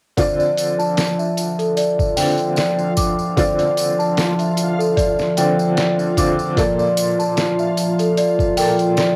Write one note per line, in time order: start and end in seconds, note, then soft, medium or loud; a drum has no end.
0.16 2.13 D3 medium
0.16 9.16 F3 medium
0.16 2.13 C4 medium
0.16 9.16 F4 medium
0.16 2.14 F4 medium
0.16 0.30 D5 medium
0.16 2.14 D5 medium
0.16 kick medium
0.16 closed hi-hat medium
0.16 tambourine soft
0.39 0.77 D5 medium
0.39 tambourine soft
0.57 closed hi-hat medium
0.57 tambourine medium
0.79 1.17 A5 medium
0.79 tambourine soft
0.97 snare loud
0.97 closed hi-hat medium
0.97 tambourine soft
1.19 1.57 E5 medium
1.19 tambourine soft
1.37 closed hi-hat medium
1.37 tambourine medium
1.59 1.75 A4 medium
1.59 closed hi-hat soft
1.59 tambourine soft
1.77 2.15 D5 medium
1.77 closed hi-hat medium
1.77 tambourine soft
1.99 kick medium
1.99 tambourine soft
2.17 3.33 D3 medium
2.17 3.33 C4 medium
2.17 3.34 F4 medium
2.17 3.34 D5 medium
2.17 2.55 G5 medium
2.17 open hi-hat medium
2.17 tambourine medium
2.38 closed hi-hat soft
2.38 tambourine soft
2.56 2.78 D5 medium
2.56 snare loud
2.56 closed hi-hat medium
2.56 tambourine soft
2.79 tambourine soft
2.97 3.10 D6 medium
2.97 kick medium
2.97 closed hi-hat medium
2.97 tambourine medium
3.19 tambourine soft
3.37 5.33 D3 medium
3.37 5.33 C4 medium
3.37 5.33 F4 medium
3.37 3.50 D5 medium
3.37 5.34 D5 medium
3.37 kick medium
3.37 closed hi-hat medium
3.37 tambourine soft
3.59 3.97 D5 medium
3.59 closed hi-hat soft
3.59 tambourine soft
3.77 closed hi-hat medium
3.77 tambourine medium
3.99 4.37 A5 medium
3.99 tambourine soft
4.17 snare loud
4.17 closed hi-hat medium
4.17 tambourine soft
4.39 4.77 E5 medium
4.39 closed hi-hat soft
4.39 tambourine soft
4.57 closed hi-hat medium
4.57 tambourine medium
4.79 4.95 A4 medium
4.79 tambourine soft
4.97 5.35 D5 medium
4.97 kick loud
4.97 closed hi-hat medium
4.97 tambourine soft
5.19 snare soft
5.19 tambourine soft
5.37 6.13 D3 medium
5.37 6.13 C4 medium
5.37 6.13 F4 medium
5.37 6.14 D5 medium
5.37 5.76 G5 medium
5.37 closed hi-hat medium
5.37 tambourine medium
5.59 tambourine soft
5.77 5.98 D5 medium
5.77 snare loud
5.77 closed hi-hat medium
5.77 tambourine soft
5.99 tambourine soft
6.17 6.53 D3 medium
6.17 6.53 C4 medium
6.17 6.53 F4 medium
6.17 6.54 D5 medium
6.17 6.30 D6 medium
6.17 kick medium
6.17 closed hi-hat medium
6.17 tambourine medium
6.39 tambourine soft
6.56 8.53 A#2 medium
6.56 8.53 A#3 medium
6.56 8.53 A4 medium
6.56 6.70 D5 medium
6.56 8.54 D5 medium
6.56 kick medium
6.56 closed hi-hat medium
6.56 tambourine soft
6.79 7.17 D5 medium
6.79 tambourine soft
6.97 closed hi-hat medium
6.97 tambourine medium
7.19 7.57 A5 medium
7.19 tambourine soft
7.37 snare loud
7.37 closed hi-hat medium
7.37 tambourine soft
7.59 7.97 E5 medium
7.59 tambourine soft
7.77 closed hi-hat medium
7.77 tambourine medium
7.99 8.16 A4 medium
7.99 closed hi-hat soft
7.99 tambourine soft
8.17 8.56 D5 medium
8.17 closed hi-hat medium
8.17 tambourine soft
8.39 kick medium
8.39 tambourine soft
8.57 9.16 A#2 medium
8.57 9.16 A#3 medium
8.57 9.16 A4 medium
8.57 9.16 D5 medium
8.57 8.96 G5 medium
8.57 open hi-hat medium
8.57 tambourine medium
8.79 closed hi-hat soft
8.79 tambourine soft
8.97 9.16 D5 medium
8.97 snare loud
8.97 closed hi-hat medium
8.97 tambourine soft